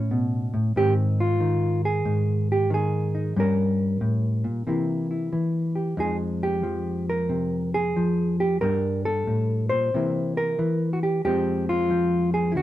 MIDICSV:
0, 0, Header, 1, 2, 480
1, 0, Start_track
1, 0, Key_signature, -4, "minor"
1, 0, Tempo, 655022
1, 546, Time_signature, 4, 2, 24, 8
1, 9250, End_track
2, 0, Start_track
2, 0, Title_t, "Hollow-body jazz guitar"
2, 0, Program_c, 0, 26
2, 0, Note_on_c, 0, 45, 68
2, 0, Note_on_c, 0, 61, 42
2, 0, Note_on_c, 0, 64, 80
2, 81, Note_on_c, 0, 47, 57
2, 384, Note_off_c, 0, 45, 0
2, 392, Note_off_c, 0, 47, 0
2, 392, Note_on_c, 0, 45, 60
2, 533, Note_off_c, 0, 61, 0
2, 550, Note_off_c, 0, 45, 0
2, 556, Note_off_c, 0, 64, 0
2, 558, Note_on_c, 0, 44, 66
2, 563, Note_on_c, 0, 51, 43
2, 564, Note_on_c, 0, 60, 46
2, 567, Note_on_c, 0, 67, 92
2, 572, Note_on_c, 0, 63, 45
2, 683, Note_off_c, 0, 67, 0
2, 882, Note_on_c, 0, 65, 82
2, 1020, Note_off_c, 0, 51, 0
2, 1029, Note_on_c, 0, 51, 59
2, 1353, Note_off_c, 0, 65, 0
2, 1358, Note_on_c, 0, 68, 89
2, 1496, Note_off_c, 0, 44, 0
2, 1505, Note_on_c, 0, 44, 56
2, 1830, Note_off_c, 0, 68, 0
2, 1845, Note_on_c, 0, 67, 83
2, 1972, Note_off_c, 0, 51, 0
2, 1981, Note_on_c, 0, 51, 56
2, 1996, Note_off_c, 0, 67, 0
2, 2008, Note_on_c, 0, 68, 81
2, 2297, Note_off_c, 0, 63, 0
2, 2306, Note_on_c, 0, 63, 43
2, 2445, Note_off_c, 0, 44, 0
2, 2447, Note_off_c, 0, 63, 0
2, 2454, Note_off_c, 0, 60, 0
2, 2463, Note_off_c, 0, 51, 0
2, 2465, Note_on_c, 0, 43, 71
2, 2469, Note_on_c, 0, 55, 47
2, 2476, Note_off_c, 0, 68, 0
2, 2476, Note_on_c, 0, 61, 43
2, 2490, Note_on_c, 0, 70, 90
2, 2936, Note_off_c, 0, 43, 0
2, 2939, Note_on_c, 0, 45, 57
2, 3256, Note_on_c, 0, 46, 51
2, 3260, Note_off_c, 0, 45, 0
2, 3407, Note_off_c, 0, 55, 0
2, 3411, Note_off_c, 0, 61, 0
2, 3417, Note_off_c, 0, 46, 0
2, 3420, Note_on_c, 0, 48, 63
2, 3426, Note_on_c, 0, 52, 41
2, 3429, Note_on_c, 0, 58, 44
2, 3437, Note_on_c, 0, 64, 42
2, 3734, Note_off_c, 0, 64, 0
2, 3743, Note_on_c, 0, 64, 38
2, 3894, Note_off_c, 0, 52, 0
2, 3903, Note_off_c, 0, 48, 0
2, 3903, Note_on_c, 0, 52, 53
2, 4214, Note_off_c, 0, 70, 0
2, 4217, Note_on_c, 0, 67, 42
2, 4362, Note_off_c, 0, 67, 0
2, 4364, Note_off_c, 0, 52, 0
2, 4365, Note_off_c, 0, 64, 0
2, 4367, Note_off_c, 0, 58, 0
2, 4376, Note_on_c, 0, 41, 69
2, 4382, Note_on_c, 0, 53, 45
2, 4387, Note_on_c, 0, 56, 46
2, 4389, Note_on_c, 0, 63, 45
2, 4397, Note_on_c, 0, 68, 89
2, 4514, Note_off_c, 0, 68, 0
2, 4712, Note_on_c, 0, 67, 87
2, 4851, Note_off_c, 0, 53, 0
2, 4860, Note_on_c, 0, 53, 57
2, 5188, Note_off_c, 0, 67, 0
2, 5199, Note_on_c, 0, 70, 81
2, 5344, Note_on_c, 0, 48, 57
2, 5672, Note_off_c, 0, 70, 0
2, 5675, Note_on_c, 0, 68, 86
2, 5823, Note_off_c, 0, 53, 0
2, 5825, Note_off_c, 0, 48, 0
2, 5836, Note_on_c, 0, 53, 56
2, 6150, Note_off_c, 0, 68, 0
2, 6157, Note_on_c, 0, 67, 86
2, 6288, Note_off_c, 0, 63, 0
2, 6292, Note_off_c, 0, 53, 0
2, 6301, Note_off_c, 0, 41, 0
2, 6307, Note_off_c, 0, 56, 0
2, 6307, Note_off_c, 0, 67, 0
2, 6310, Note_on_c, 0, 70, 95
2, 6314, Note_on_c, 0, 43, 69
2, 6323, Note_on_c, 0, 55, 44
2, 6326, Note_on_c, 0, 62, 44
2, 6627, Note_off_c, 0, 70, 0
2, 6635, Note_on_c, 0, 69, 91
2, 6790, Note_off_c, 0, 43, 0
2, 6795, Note_on_c, 0, 45, 53
2, 7101, Note_off_c, 0, 69, 0
2, 7104, Note_on_c, 0, 72, 101
2, 7109, Note_off_c, 0, 45, 0
2, 7119, Note_on_c, 0, 46, 57
2, 7256, Note_off_c, 0, 55, 0
2, 7257, Note_off_c, 0, 62, 0
2, 7274, Note_off_c, 0, 46, 0
2, 7286, Note_on_c, 0, 48, 66
2, 7290, Note_on_c, 0, 52, 44
2, 7298, Note_on_c, 0, 58, 44
2, 7301, Note_on_c, 0, 64, 44
2, 7585, Note_off_c, 0, 72, 0
2, 7601, Note_on_c, 0, 70, 94
2, 7750, Note_off_c, 0, 52, 0
2, 7757, Note_off_c, 0, 48, 0
2, 7758, Note_on_c, 0, 52, 63
2, 8005, Note_off_c, 0, 70, 0
2, 8011, Note_on_c, 0, 66, 64
2, 8073, Note_off_c, 0, 66, 0
2, 8083, Note_on_c, 0, 67, 77
2, 8214, Note_off_c, 0, 52, 0
2, 8224, Note_off_c, 0, 58, 0
2, 8225, Note_off_c, 0, 64, 0
2, 8233, Note_off_c, 0, 67, 0
2, 8242, Note_on_c, 0, 41, 69
2, 8243, Note_on_c, 0, 67, 98
2, 8248, Note_on_c, 0, 53, 50
2, 8253, Note_on_c, 0, 56, 45
2, 8258, Note_on_c, 0, 60, 47
2, 8554, Note_off_c, 0, 67, 0
2, 8568, Note_on_c, 0, 65, 87
2, 8715, Note_off_c, 0, 53, 0
2, 8723, Note_on_c, 0, 53, 60
2, 9038, Note_off_c, 0, 65, 0
2, 9042, Note_on_c, 0, 68, 86
2, 9170, Note_off_c, 0, 60, 0
2, 9174, Note_on_c, 0, 64, 63
2, 9177, Note_off_c, 0, 53, 0
2, 9196, Note_off_c, 0, 41, 0
2, 9196, Note_off_c, 0, 68, 0
2, 9199, Note_off_c, 0, 64, 0
2, 9199, Note_on_c, 0, 50, 66
2, 9201, Note_off_c, 0, 56, 0
2, 9211, Note_on_c, 0, 66, 91
2, 9250, Note_off_c, 0, 50, 0
2, 9250, Note_off_c, 0, 66, 0
2, 9250, End_track
0, 0, End_of_file